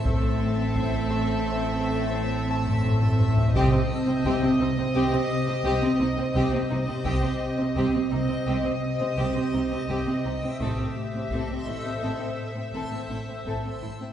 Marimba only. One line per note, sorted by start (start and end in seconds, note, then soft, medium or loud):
0.06 0.27 A2 medium
0.41 0.62 A3 medium
0.76 0.97 A3 medium
1.11 1.32 A2 medium
1.46 1.67 A2 medium
1.81 2.02 A2 medium
2.15 2.36 A3 medium
2.50 2.71 A2 medium
2.85 3.06 A2 medium
3.21 3.41 A2 medium
3.55 3.76 C3 medium
3.90 4.11 C4 medium
4.25 4.46 C4 medium
4.60 4.81 C3 medium
4.95 5.16 C3 medium
5.30 5.51 C3 medium
5.65 5.86 C4 medium
6.00 6.21 C3 medium
6.35 6.56 C3 medium
6.70 6.91 C3 medium
7.05 7.27 C3 medium
7.41 7.62 C4 medium
7.76 7.97 C4 medium
8.11 8.33 C3 medium
8.46 8.68 C3 medium
8.82 9.03 C3 medium
9.19 9.40 C4 soft
9.53 9.75 C3 soft
9.89 10.11 C3 medium
10.24 10.46 C3 soft
10.60 10.81 A2 medium
10.96 11.17 A3 soft
11.31 11.52 A3 soft
11.66 11.87 A2 medium
12.01 12.23 A2 soft
12.37 12.58 A2 soft
12.73 12.95 A3 soft
13.09 13.31 A2 soft
13.46 13.67 A2 soft
13.82 14.04 A2 soft